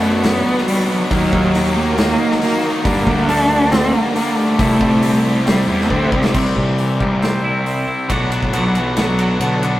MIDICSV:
0, 0, Header, 1, 8, 480
1, 0, Start_track
1, 0, Tempo, 436999
1, 1213, Time_signature, 4, 2, 24, 8
1, 10761, End_track
2, 0, Start_track
2, 0, Title_t, "String machine"
2, 0, Program_c, 0, 50
2, 0, Note_on_c, 0, 62, 74
2, 0, Note_on_c, 0, 66, 68
2, 0, Note_on_c, 0, 71, 71
2, 0, Note_on_c, 0, 78, 80
2, 1196, Note_off_c, 0, 62, 0
2, 1198, Note_off_c, 0, 66, 0
2, 1201, Note_off_c, 0, 71, 0
2, 1224, Note_on_c, 0, 66, 70
2, 1227, Note_on_c, 0, 70, 68
2, 1230, Note_on_c, 0, 63, 78
2, 3093, Note_off_c, 0, 78, 0
2, 3116, Note_off_c, 0, 66, 0
2, 3119, Note_off_c, 0, 63, 0
2, 3119, Note_on_c, 0, 67, 69
2, 3120, Note_on_c, 0, 62, 75
2, 3124, Note_on_c, 0, 79, 87
2, 5015, Note_off_c, 0, 70, 0
2, 5023, Note_off_c, 0, 62, 0
2, 5039, Note_on_c, 0, 64, 82
2, 5040, Note_on_c, 0, 72, 74
2, 6922, Note_off_c, 0, 67, 0
2, 6924, Note_off_c, 0, 79, 0
2, 6943, Note_off_c, 0, 64, 0
2, 6943, Note_off_c, 0, 72, 0
2, 10761, End_track
3, 0, Start_track
3, 0, Title_t, "Clean electric guitar"
3, 0, Program_c, 1, 27
3, 7205, Note_on_c, 1, 52, 70
3, 7439, Note_off_c, 1, 52, 0
3, 7453, Note_on_c, 1, 52, 65
3, 7695, Note_on_c, 1, 55, 63
3, 7929, Note_on_c, 1, 60, 68
3, 8173, Note_on_c, 1, 64, 65
3, 8405, Note_off_c, 1, 60, 0
3, 8418, Note_on_c, 1, 60, 59
3, 8639, Note_off_c, 1, 64, 0
3, 8652, Note_off_c, 1, 52, 0
3, 8652, Note_on_c, 1, 64, 62
3, 8891, Note_off_c, 1, 64, 0
3, 8893, Note_off_c, 1, 55, 0
3, 8894, Note_off_c, 1, 60, 0
3, 8910, Note_on_c, 1, 66, 97
3, 9118, Note_off_c, 1, 66, 0
3, 9122, Note_on_c, 1, 66, 67
3, 9386, Note_off_c, 1, 66, 0
3, 9390, Note_on_c, 1, 66, 88
3, 9607, Note_off_c, 1, 66, 0
3, 9611, Note_on_c, 1, 66, 70
3, 9865, Note_off_c, 1, 66, 0
3, 9878, Note_on_c, 1, 66, 80
3, 10082, Note_off_c, 1, 66, 0
3, 10095, Note_on_c, 1, 66, 81
3, 10343, Note_off_c, 1, 66, 0
3, 10356, Note_on_c, 1, 66, 69
3, 10557, Note_off_c, 1, 66, 0
3, 10570, Note_on_c, 1, 66, 69
3, 10761, Note_off_c, 1, 66, 0
3, 10761, End_track
4, 0, Start_track
4, 0, Title_t, "Distorted electric guitar"
4, 0, Program_c, 2, 30
4, 0, Note_on_c, 2, 47, 72
4, 5, Note_on_c, 2, 62, 79
4, 17, Note_on_c, 2, 59, 73
4, 29, Note_on_c, 2, 54, 64
4, 236, Note_off_c, 2, 47, 0
4, 248, Note_off_c, 2, 54, 0
4, 249, Note_on_c, 2, 47, 89
4, 253, Note_off_c, 2, 59, 0
4, 258, Note_off_c, 2, 62, 0
4, 261, Note_on_c, 2, 54, 94
4, 266, Note_on_c, 2, 59, 98
4, 271, Note_on_c, 2, 62, 104
4, 492, Note_off_c, 2, 62, 0
4, 501, Note_off_c, 2, 59, 0
4, 505, Note_on_c, 2, 62, 74
4, 511, Note_off_c, 2, 54, 0
4, 514, Note_on_c, 2, 59, 70
4, 524, Note_on_c, 2, 54, 61
4, 721, Note_off_c, 2, 47, 0
4, 734, Note_on_c, 2, 47, 73
4, 735, Note_off_c, 2, 54, 0
4, 741, Note_off_c, 2, 59, 0
4, 746, Note_off_c, 2, 62, 0
4, 748, Note_on_c, 2, 54, 81
4, 755, Note_on_c, 2, 59, 89
4, 759, Note_on_c, 2, 62, 98
4, 1198, Note_off_c, 2, 54, 0
4, 1199, Note_off_c, 2, 47, 0
4, 1209, Note_off_c, 2, 59, 0
4, 1210, Note_on_c, 2, 51, 93
4, 1211, Note_off_c, 2, 62, 0
4, 1211, Note_on_c, 2, 54, 107
4, 1223, Note_on_c, 2, 58, 106
4, 1226, Note_on_c, 2, 63, 101
4, 1679, Note_off_c, 2, 51, 0
4, 1686, Note_off_c, 2, 54, 0
4, 1692, Note_on_c, 2, 51, 76
4, 1699, Note_off_c, 2, 63, 0
4, 1699, Note_on_c, 2, 54, 89
4, 1703, Note_off_c, 2, 58, 0
4, 1707, Note_on_c, 2, 58, 78
4, 1712, Note_on_c, 2, 63, 84
4, 1914, Note_off_c, 2, 63, 0
4, 1927, Note_on_c, 2, 63, 75
4, 1936, Note_off_c, 2, 54, 0
4, 1938, Note_off_c, 2, 58, 0
4, 1942, Note_on_c, 2, 58, 69
4, 1949, Note_on_c, 2, 54, 64
4, 2148, Note_off_c, 2, 51, 0
4, 2160, Note_off_c, 2, 54, 0
4, 2161, Note_on_c, 2, 51, 97
4, 2163, Note_off_c, 2, 58, 0
4, 2168, Note_off_c, 2, 63, 0
4, 2173, Note_on_c, 2, 54, 98
4, 2176, Note_on_c, 2, 58, 103
4, 2182, Note_on_c, 2, 63, 108
4, 2392, Note_off_c, 2, 63, 0
4, 2405, Note_on_c, 2, 63, 82
4, 2406, Note_off_c, 2, 58, 0
4, 2409, Note_off_c, 2, 54, 0
4, 2420, Note_on_c, 2, 58, 76
4, 2422, Note_on_c, 2, 54, 62
4, 2629, Note_off_c, 2, 51, 0
4, 2636, Note_off_c, 2, 54, 0
4, 2640, Note_off_c, 2, 58, 0
4, 2643, Note_on_c, 2, 51, 79
4, 2644, Note_off_c, 2, 63, 0
4, 2649, Note_on_c, 2, 54, 85
4, 2653, Note_on_c, 2, 58, 86
4, 2657, Note_on_c, 2, 63, 97
4, 3112, Note_off_c, 2, 51, 0
4, 3114, Note_on_c, 2, 43, 97
4, 3115, Note_off_c, 2, 54, 0
4, 3117, Note_off_c, 2, 58, 0
4, 3119, Note_off_c, 2, 63, 0
4, 3125, Note_on_c, 2, 50, 92
4, 3130, Note_on_c, 2, 55, 103
4, 3135, Note_on_c, 2, 58, 109
4, 3140, Note_on_c, 2, 62, 109
4, 3578, Note_off_c, 2, 50, 0
4, 3590, Note_off_c, 2, 58, 0
4, 3591, Note_on_c, 2, 50, 74
4, 3598, Note_off_c, 2, 55, 0
4, 3600, Note_off_c, 2, 62, 0
4, 3602, Note_on_c, 2, 55, 81
4, 3604, Note_on_c, 2, 58, 92
4, 3613, Note_on_c, 2, 62, 87
4, 3817, Note_off_c, 2, 62, 0
4, 3831, Note_on_c, 2, 62, 81
4, 3835, Note_off_c, 2, 58, 0
4, 3840, Note_off_c, 2, 43, 0
4, 3848, Note_on_c, 2, 58, 70
4, 3849, Note_off_c, 2, 55, 0
4, 3854, Note_on_c, 2, 55, 63
4, 4065, Note_off_c, 2, 50, 0
4, 4073, Note_off_c, 2, 58, 0
4, 4074, Note_on_c, 2, 43, 88
4, 4075, Note_off_c, 2, 62, 0
4, 4077, Note_off_c, 2, 55, 0
4, 4078, Note_on_c, 2, 50, 101
4, 4082, Note_on_c, 2, 55, 94
4, 4086, Note_on_c, 2, 58, 101
4, 4088, Note_on_c, 2, 62, 107
4, 4297, Note_off_c, 2, 62, 0
4, 4304, Note_off_c, 2, 58, 0
4, 4310, Note_on_c, 2, 62, 81
4, 4317, Note_on_c, 2, 58, 70
4, 4321, Note_off_c, 2, 55, 0
4, 4326, Note_on_c, 2, 55, 64
4, 4539, Note_off_c, 2, 50, 0
4, 4552, Note_off_c, 2, 58, 0
4, 4552, Note_on_c, 2, 50, 82
4, 4555, Note_off_c, 2, 55, 0
4, 4559, Note_off_c, 2, 62, 0
4, 4560, Note_off_c, 2, 43, 0
4, 4560, Note_on_c, 2, 55, 82
4, 4565, Note_on_c, 2, 58, 89
4, 4572, Note_on_c, 2, 62, 87
4, 5018, Note_off_c, 2, 50, 0
4, 5023, Note_on_c, 2, 48, 86
4, 5030, Note_off_c, 2, 55, 0
4, 5031, Note_off_c, 2, 58, 0
4, 5035, Note_off_c, 2, 62, 0
4, 5035, Note_on_c, 2, 55, 108
4, 5041, Note_on_c, 2, 60, 104
4, 5045, Note_on_c, 2, 64, 97
4, 5487, Note_off_c, 2, 48, 0
4, 5496, Note_off_c, 2, 55, 0
4, 5500, Note_on_c, 2, 48, 75
4, 5506, Note_off_c, 2, 60, 0
4, 5509, Note_off_c, 2, 64, 0
4, 5509, Note_on_c, 2, 55, 83
4, 5519, Note_on_c, 2, 60, 85
4, 5522, Note_on_c, 2, 64, 78
4, 5739, Note_off_c, 2, 64, 0
4, 5752, Note_off_c, 2, 60, 0
4, 5752, Note_on_c, 2, 64, 80
4, 5758, Note_off_c, 2, 55, 0
4, 5765, Note_on_c, 2, 60, 66
4, 5771, Note_on_c, 2, 55, 62
4, 5978, Note_off_c, 2, 48, 0
4, 5988, Note_off_c, 2, 55, 0
4, 5991, Note_on_c, 2, 48, 83
4, 5992, Note_off_c, 2, 60, 0
4, 6001, Note_off_c, 2, 64, 0
4, 6001, Note_on_c, 2, 55, 93
4, 6005, Note_on_c, 2, 60, 98
4, 6014, Note_on_c, 2, 64, 105
4, 6222, Note_off_c, 2, 64, 0
4, 6231, Note_off_c, 2, 60, 0
4, 6235, Note_on_c, 2, 64, 73
4, 6243, Note_off_c, 2, 55, 0
4, 6244, Note_on_c, 2, 60, 65
4, 6256, Note_on_c, 2, 55, 61
4, 6459, Note_off_c, 2, 48, 0
4, 6467, Note_off_c, 2, 55, 0
4, 6471, Note_off_c, 2, 60, 0
4, 6472, Note_on_c, 2, 48, 81
4, 6480, Note_off_c, 2, 64, 0
4, 6480, Note_on_c, 2, 55, 76
4, 6484, Note_on_c, 2, 60, 88
4, 6493, Note_on_c, 2, 64, 85
4, 6945, Note_off_c, 2, 48, 0
4, 6949, Note_off_c, 2, 55, 0
4, 6951, Note_off_c, 2, 60, 0
4, 6955, Note_off_c, 2, 64, 0
4, 6956, Note_on_c, 2, 48, 86
4, 6969, Note_on_c, 2, 55, 87
4, 6982, Note_on_c, 2, 60, 94
4, 8870, Note_off_c, 2, 48, 0
4, 8876, Note_off_c, 2, 55, 0
4, 8882, Note_on_c, 2, 47, 85
4, 8883, Note_off_c, 2, 60, 0
4, 8886, Note_on_c, 2, 54, 91
4, 8894, Note_on_c, 2, 59, 92
4, 8898, Note_on_c, 2, 62, 89
4, 9111, Note_off_c, 2, 62, 0
4, 9119, Note_off_c, 2, 59, 0
4, 9124, Note_on_c, 2, 62, 61
4, 9132, Note_on_c, 2, 59, 56
4, 9138, Note_off_c, 2, 54, 0
4, 9142, Note_on_c, 2, 54, 53
4, 9345, Note_off_c, 2, 47, 0
4, 9358, Note_on_c, 2, 47, 70
4, 9360, Note_off_c, 2, 59, 0
4, 9364, Note_off_c, 2, 62, 0
4, 9366, Note_off_c, 2, 54, 0
4, 9370, Note_on_c, 2, 54, 69
4, 9373, Note_on_c, 2, 59, 76
4, 9377, Note_on_c, 2, 62, 72
4, 9598, Note_off_c, 2, 62, 0
4, 9605, Note_off_c, 2, 59, 0
4, 9611, Note_on_c, 2, 62, 77
4, 9617, Note_off_c, 2, 47, 0
4, 9618, Note_on_c, 2, 59, 79
4, 9620, Note_off_c, 2, 54, 0
4, 9624, Note_on_c, 2, 54, 75
4, 9630, Note_on_c, 2, 47, 70
4, 9837, Note_off_c, 2, 47, 0
4, 9845, Note_off_c, 2, 54, 0
4, 9851, Note_off_c, 2, 59, 0
4, 9851, Note_on_c, 2, 47, 67
4, 9858, Note_on_c, 2, 54, 71
4, 9859, Note_off_c, 2, 62, 0
4, 9864, Note_on_c, 2, 59, 80
4, 9872, Note_on_c, 2, 62, 72
4, 10079, Note_off_c, 2, 62, 0
4, 10085, Note_off_c, 2, 59, 0
4, 10092, Note_on_c, 2, 62, 87
4, 10095, Note_off_c, 2, 54, 0
4, 10098, Note_on_c, 2, 59, 87
4, 10103, Note_off_c, 2, 47, 0
4, 10108, Note_on_c, 2, 54, 71
4, 10117, Note_on_c, 2, 47, 62
4, 10313, Note_off_c, 2, 47, 0
4, 10324, Note_off_c, 2, 54, 0
4, 10326, Note_on_c, 2, 47, 77
4, 10335, Note_off_c, 2, 59, 0
4, 10335, Note_off_c, 2, 62, 0
4, 10337, Note_on_c, 2, 54, 72
4, 10348, Note_on_c, 2, 59, 76
4, 10348, Note_on_c, 2, 62, 78
4, 10561, Note_off_c, 2, 62, 0
4, 10574, Note_off_c, 2, 59, 0
4, 10574, Note_on_c, 2, 62, 68
4, 10582, Note_off_c, 2, 54, 0
4, 10587, Note_on_c, 2, 59, 65
4, 10595, Note_on_c, 2, 54, 55
4, 10761, Note_off_c, 2, 47, 0
4, 10761, Note_off_c, 2, 54, 0
4, 10761, Note_off_c, 2, 59, 0
4, 10761, Note_off_c, 2, 62, 0
4, 10761, End_track
5, 0, Start_track
5, 0, Title_t, "Distorted electric guitar"
5, 0, Program_c, 3, 30
5, 975, Note_on_c, 3, 62, 78
5, 989, Note_on_c, 3, 59, 66
5, 997, Note_on_c, 3, 54, 61
5, 1199, Note_off_c, 3, 62, 0
5, 1206, Note_off_c, 3, 59, 0
5, 1211, Note_off_c, 3, 54, 0
5, 1451, Note_on_c, 3, 63, 81
5, 1467, Note_on_c, 3, 58, 67
5, 1475, Note_on_c, 3, 54, 61
5, 1696, Note_off_c, 3, 54, 0
5, 1708, Note_off_c, 3, 58, 0
5, 1710, Note_off_c, 3, 63, 0
5, 2904, Note_on_c, 3, 63, 73
5, 2918, Note_on_c, 3, 58, 64
5, 2927, Note_on_c, 3, 54, 60
5, 3122, Note_off_c, 3, 63, 0
5, 3130, Note_off_c, 3, 58, 0
5, 3134, Note_off_c, 3, 54, 0
5, 3367, Note_on_c, 3, 62, 82
5, 3382, Note_on_c, 3, 58, 74
5, 3391, Note_on_c, 3, 55, 64
5, 3602, Note_on_c, 3, 43, 91
5, 3612, Note_off_c, 3, 58, 0
5, 3613, Note_off_c, 3, 55, 0
5, 3617, Note_off_c, 3, 62, 0
5, 4085, Note_off_c, 3, 43, 0
5, 4800, Note_on_c, 3, 62, 69
5, 4810, Note_on_c, 3, 58, 68
5, 4821, Note_on_c, 3, 55, 65
5, 5029, Note_off_c, 3, 62, 0
5, 5034, Note_off_c, 3, 58, 0
5, 5048, Note_off_c, 3, 55, 0
5, 5284, Note_on_c, 3, 64, 74
5, 5295, Note_on_c, 3, 60, 63
5, 5305, Note_on_c, 3, 55, 59
5, 5522, Note_off_c, 3, 55, 0
5, 5526, Note_off_c, 3, 60, 0
5, 5534, Note_off_c, 3, 64, 0
5, 6724, Note_on_c, 3, 64, 73
5, 6736, Note_on_c, 3, 60, 64
5, 6748, Note_on_c, 3, 55, 55
5, 6951, Note_off_c, 3, 64, 0
5, 6957, Note_off_c, 3, 60, 0
5, 6963, Note_off_c, 3, 55, 0
5, 10761, End_track
6, 0, Start_track
6, 0, Title_t, "Cello"
6, 0, Program_c, 4, 42
6, 0, Note_on_c, 4, 57, 96
6, 243, Note_on_c, 4, 59, 107
6, 260, Note_off_c, 4, 57, 0
6, 718, Note_off_c, 4, 59, 0
6, 725, Note_on_c, 4, 55, 97
6, 963, Note_on_c, 4, 54, 93
6, 979, Note_off_c, 4, 55, 0
6, 1189, Note_off_c, 4, 54, 0
6, 1196, Note_on_c, 4, 54, 102
6, 1928, Note_on_c, 4, 58, 103
6, 1945, Note_off_c, 4, 54, 0
6, 2170, Note_off_c, 4, 58, 0
6, 2176, Note_on_c, 4, 58, 108
6, 2620, Note_off_c, 4, 58, 0
6, 2665, Note_on_c, 4, 58, 105
6, 2992, Note_off_c, 4, 58, 0
6, 3122, Note_on_c, 4, 58, 110
6, 3611, Note_on_c, 4, 62, 112
6, 3627, Note_off_c, 4, 58, 0
6, 4078, Note_on_c, 4, 60, 109
6, 4094, Note_off_c, 4, 62, 0
6, 4308, Note_on_c, 4, 58, 103
6, 4325, Note_off_c, 4, 60, 0
6, 4549, Note_off_c, 4, 58, 0
6, 4555, Note_on_c, 4, 58, 98
6, 4787, Note_on_c, 4, 57, 112
6, 4803, Note_off_c, 4, 58, 0
6, 5979, Note_off_c, 4, 57, 0
6, 5986, Note_on_c, 4, 55, 96
6, 6218, Note_off_c, 4, 55, 0
6, 6236, Note_on_c, 4, 55, 92
6, 6464, Note_on_c, 4, 60, 91
6, 6481, Note_off_c, 4, 55, 0
6, 6835, Note_off_c, 4, 60, 0
6, 9400, Note_on_c, 4, 54, 94
6, 9639, Note_on_c, 4, 52, 78
6, 9656, Note_off_c, 4, 54, 0
6, 9851, Note_off_c, 4, 52, 0
6, 9857, Note_on_c, 4, 54, 95
6, 10321, Note_off_c, 4, 54, 0
6, 10337, Note_on_c, 4, 50, 84
6, 10761, Note_off_c, 4, 50, 0
6, 10761, End_track
7, 0, Start_track
7, 0, Title_t, "Picked electric bass"
7, 0, Program_c, 5, 34
7, 0, Note_on_c, 5, 42, 85
7, 451, Note_off_c, 5, 42, 0
7, 1217, Note_on_c, 5, 39, 101
7, 1442, Note_off_c, 5, 39, 0
7, 1455, Note_on_c, 5, 39, 98
7, 2368, Note_off_c, 5, 39, 0
7, 3132, Note_on_c, 5, 43, 101
7, 3358, Note_off_c, 5, 43, 0
7, 3368, Note_on_c, 5, 38, 89
7, 4283, Note_off_c, 5, 38, 0
7, 5044, Note_on_c, 5, 36, 97
7, 5272, Note_off_c, 5, 36, 0
7, 5277, Note_on_c, 5, 36, 93
7, 6197, Note_off_c, 5, 36, 0
7, 6241, Note_on_c, 5, 40, 79
7, 6459, Note_off_c, 5, 40, 0
7, 6478, Note_on_c, 5, 38, 84
7, 6698, Note_off_c, 5, 38, 0
7, 6722, Note_on_c, 5, 36, 92
7, 6939, Note_off_c, 5, 36, 0
7, 6968, Note_on_c, 5, 36, 85
7, 7194, Note_off_c, 5, 36, 0
7, 7211, Note_on_c, 5, 36, 87
7, 7663, Note_off_c, 5, 36, 0
7, 7694, Note_on_c, 5, 36, 95
7, 8608, Note_off_c, 5, 36, 0
7, 8895, Note_on_c, 5, 35, 90
7, 9348, Note_off_c, 5, 35, 0
7, 9372, Note_on_c, 5, 35, 88
7, 10289, Note_off_c, 5, 35, 0
7, 10324, Note_on_c, 5, 35, 81
7, 10761, Note_off_c, 5, 35, 0
7, 10761, End_track
8, 0, Start_track
8, 0, Title_t, "Drums"
8, 258, Note_on_c, 9, 46, 62
8, 270, Note_on_c, 9, 38, 112
8, 368, Note_off_c, 9, 46, 0
8, 380, Note_off_c, 9, 38, 0
8, 637, Note_on_c, 9, 38, 35
8, 746, Note_off_c, 9, 38, 0
8, 746, Note_on_c, 9, 46, 64
8, 856, Note_off_c, 9, 46, 0
8, 1220, Note_on_c, 9, 36, 117
8, 1220, Note_on_c, 9, 46, 64
8, 1330, Note_off_c, 9, 36, 0
8, 1330, Note_off_c, 9, 46, 0
8, 1459, Note_on_c, 9, 36, 91
8, 1569, Note_off_c, 9, 36, 0
8, 1698, Note_on_c, 9, 46, 68
8, 1807, Note_off_c, 9, 46, 0
8, 2171, Note_on_c, 9, 46, 66
8, 2183, Note_on_c, 9, 38, 110
8, 2281, Note_off_c, 9, 46, 0
8, 2293, Note_off_c, 9, 38, 0
8, 2542, Note_on_c, 9, 38, 34
8, 2652, Note_off_c, 9, 38, 0
8, 2655, Note_on_c, 9, 46, 70
8, 2765, Note_off_c, 9, 46, 0
8, 3132, Note_on_c, 9, 36, 118
8, 3133, Note_on_c, 9, 46, 68
8, 3242, Note_off_c, 9, 36, 0
8, 3242, Note_off_c, 9, 46, 0
8, 3370, Note_on_c, 9, 36, 91
8, 3480, Note_off_c, 9, 36, 0
8, 3610, Note_on_c, 9, 46, 69
8, 3720, Note_off_c, 9, 46, 0
8, 4085, Note_on_c, 9, 46, 64
8, 4097, Note_on_c, 9, 38, 114
8, 4195, Note_off_c, 9, 46, 0
8, 4207, Note_off_c, 9, 38, 0
8, 4566, Note_on_c, 9, 46, 62
8, 4676, Note_off_c, 9, 46, 0
8, 5043, Note_on_c, 9, 46, 64
8, 5044, Note_on_c, 9, 36, 123
8, 5153, Note_off_c, 9, 46, 0
8, 5154, Note_off_c, 9, 36, 0
8, 5281, Note_on_c, 9, 36, 84
8, 5391, Note_off_c, 9, 36, 0
8, 5519, Note_on_c, 9, 46, 66
8, 5629, Note_off_c, 9, 46, 0
8, 6005, Note_on_c, 9, 46, 59
8, 6017, Note_on_c, 9, 38, 114
8, 6115, Note_off_c, 9, 46, 0
8, 6127, Note_off_c, 9, 38, 0
8, 6378, Note_on_c, 9, 38, 35
8, 6484, Note_on_c, 9, 36, 69
8, 6488, Note_off_c, 9, 38, 0
8, 6594, Note_off_c, 9, 36, 0
8, 6725, Note_on_c, 9, 36, 99
8, 6834, Note_off_c, 9, 36, 0
8, 6858, Note_on_c, 9, 38, 97
8, 6967, Note_off_c, 9, 38, 0
8, 6967, Note_on_c, 9, 49, 95
8, 6970, Note_on_c, 9, 36, 112
8, 7077, Note_off_c, 9, 49, 0
8, 7080, Note_off_c, 9, 36, 0
8, 7209, Note_on_c, 9, 36, 69
8, 7319, Note_off_c, 9, 36, 0
8, 7450, Note_on_c, 9, 46, 47
8, 7559, Note_off_c, 9, 46, 0
8, 7694, Note_on_c, 9, 36, 81
8, 7804, Note_off_c, 9, 36, 0
8, 7935, Note_on_c, 9, 46, 44
8, 7947, Note_on_c, 9, 38, 95
8, 8045, Note_off_c, 9, 46, 0
8, 8057, Note_off_c, 9, 38, 0
8, 8416, Note_on_c, 9, 46, 43
8, 8526, Note_off_c, 9, 46, 0
8, 8894, Note_on_c, 9, 36, 101
8, 8894, Note_on_c, 9, 51, 92
8, 9003, Note_off_c, 9, 51, 0
8, 9004, Note_off_c, 9, 36, 0
8, 9135, Note_on_c, 9, 51, 67
8, 9245, Note_off_c, 9, 51, 0
8, 9254, Note_on_c, 9, 36, 81
8, 9364, Note_off_c, 9, 36, 0
8, 9373, Note_on_c, 9, 51, 91
8, 9483, Note_off_c, 9, 51, 0
8, 9612, Note_on_c, 9, 51, 69
8, 9722, Note_off_c, 9, 51, 0
8, 9848, Note_on_c, 9, 51, 91
8, 9860, Note_on_c, 9, 38, 95
8, 9958, Note_off_c, 9, 51, 0
8, 9970, Note_off_c, 9, 38, 0
8, 10091, Note_on_c, 9, 51, 68
8, 10201, Note_off_c, 9, 51, 0
8, 10332, Note_on_c, 9, 51, 91
8, 10442, Note_off_c, 9, 51, 0
8, 10575, Note_on_c, 9, 51, 68
8, 10685, Note_off_c, 9, 51, 0
8, 10761, End_track
0, 0, End_of_file